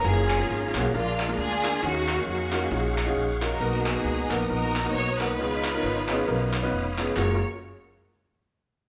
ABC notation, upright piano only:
X:1
M:4/4
L:1/16
Q:"Swing" 1/4=135
K:F#
V:1 name="Upright piano"
[A,CEFG]2 z [A,CEFG]2 z [A,CEFG] z [A,=DEGA]2 z [A,DEGA]2 z [A,DEGA] z | [CDEFG]2 z [CDEFA]2 z [CDEFA] z [CDEFG]2 z [CDEFG]2 z [CDEFA] z | [A,B,DFA]2 z [A,B,DFG]2 z [A,B,DFA] z [A,B,DFA]2 z [A,B,DFA]2 z [A,B,DFA] z | [B,CDEG]2 z [B,CDEA]2 z [B,CDEG] z [B,CDEA]2 z [B,CDEB]2 z [B,CDEG] z |
[A,EFG]2 z12 z2 |]
V:2 name="Upright piano" clef=bass
z8 A,,6 z2 | D,6 z8 z2 | B,,6 z8 z2 | C,6 z8 z2 |
F,,2 z12 z2 |]